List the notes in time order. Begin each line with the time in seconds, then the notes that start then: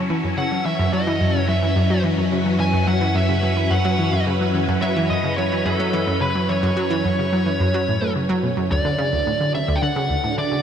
Already playing: F#2 F#3 C#4 E4 B4
0.10 E3
0.24 F#2
0.38 C#3 F#5
0.52 F#3
0.65 E3 E5
0.79 F#2
0.93 F#3 D#5
1.07 E3
1.21 F#2
1.35 C#3 C#5
1.49 F#3 E5
1.62 E3
1.76 F#2
1.90 F#3
2.04 E3
2.18 F#2
2.32 C#3
2.46 F#3
2.60 E3 G#5
2.73 F#2
2.87 F#3 F#5
3.01 E3
3.15 F#2 E5
3.29 C#3
3.43 F#3
3.57 E3
3.71 F#2 F#5
3.85 F#3
3.99 E3
4.13 F#2
4.27 C#3
4.41 F#3
4.55 E3
4.69 F#2
4.82 F#3 E5
4.96 E3
5.10 F#2 D#5
5.24 C#3
5.38 F#3 C#5
5.52 E3
5.66 F#2 A4
5.80 F#3
5.93 E3
6.07 F#2
6.21 C#3 B4
6.35 F#3
6.49 E3 C#5
6.63 F#2
6.77 F#3
6.90 E3
7.05 F#2
7.19 C#3
7.32 F#3
7.46 E3
7.60 F#2
7.74 F#3
7.88 A2
8.02 A3
8.16 C#3
8.29 F#3
8.43 B2
8.57 F#2
8.71 D2 D3 D5
8.85 D3
8.92 D4
8.99 C#3
9.04 F#4
9.13 D2
9.27 A2
9.41 D3 A4
9.54 C#3 E5
9.68 D2
9.75 G5
9.82 D3 F#5 A5
9.96 C#3
10.10 D2
10.24 A2
10.38 D3 D5
10.52 C#3